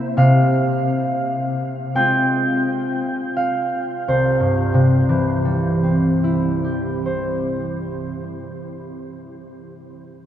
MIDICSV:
0, 0, Header, 1, 2, 480
1, 0, Start_track
1, 0, Key_signature, 0, "major"
1, 0, Tempo, 1145038
1, 71, Time_signature, 6, 3, 24, 8
1, 553, Tempo, 1307190
1, 1033, Tempo, 1449275
1, 1513, Tempo, 1372998
1, 3675, End_track
2, 0, Start_track
2, 0, Title_t, "Harp"
2, 0, Program_c, 0, 46
2, 0, Note_on_c, 0, 48, 57
2, 0, Note_on_c, 0, 58, 44
2, 0, Note_on_c, 0, 60, 42
2, 0, Note_on_c, 0, 64, 43
2, 0, Note_on_c, 0, 72, 76
2, 0, Note_on_c, 0, 76, 78
2, 67, Note_off_c, 0, 48, 0
2, 70, Note_on_c, 0, 48, 46
2, 74, Note_on_c, 0, 77, 68
2, 91, Note_off_c, 0, 58, 0
2, 91, Note_off_c, 0, 76, 0
2, 92, Note_off_c, 0, 64, 0
2, 433, Note_off_c, 0, 72, 0
2, 784, Note_off_c, 0, 60, 0
2, 785, Note_on_c, 0, 56, 34
2, 787, Note_on_c, 0, 79, 71
2, 788, Note_on_c, 0, 60, 32
2, 790, Note_on_c, 0, 65, 36
2, 1274, Note_off_c, 0, 77, 0
2, 1278, Note_on_c, 0, 77, 48
2, 1510, Note_off_c, 0, 48, 0
2, 1515, Note_on_c, 0, 36, 39
2, 1516, Note_on_c, 0, 72, 41
2, 1533, Note_off_c, 0, 56, 0
2, 1534, Note_off_c, 0, 77, 0
2, 1535, Note_off_c, 0, 65, 0
2, 1609, Note_off_c, 0, 79, 0
2, 1626, Note_on_c, 0, 43, 39
2, 1744, Note_on_c, 0, 48, 36
2, 1867, Note_on_c, 0, 52, 39
2, 1993, Note_on_c, 0, 55, 32
2, 2123, Note_off_c, 0, 60, 0
2, 2127, Note_on_c, 0, 60, 32
2, 2269, Note_on_c, 0, 64, 33
2, 2410, Note_on_c, 0, 67, 30
2, 2551, Note_off_c, 0, 72, 0
2, 2555, Note_on_c, 0, 72, 31
2, 2921, Note_off_c, 0, 36, 0
2, 3031, Note_off_c, 0, 43, 0
2, 3150, Note_off_c, 0, 48, 0
2, 3272, Note_off_c, 0, 52, 0
2, 3398, Note_off_c, 0, 55, 0
2, 3468, Note_off_c, 0, 60, 0
2, 3468, Note_off_c, 0, 72, 0
2, 3469, Note_off_c, 0, 64, 0
2, 3469, Note_off_c, 0, 67, 0
2, 3675, End_track
0, 0, End_of_file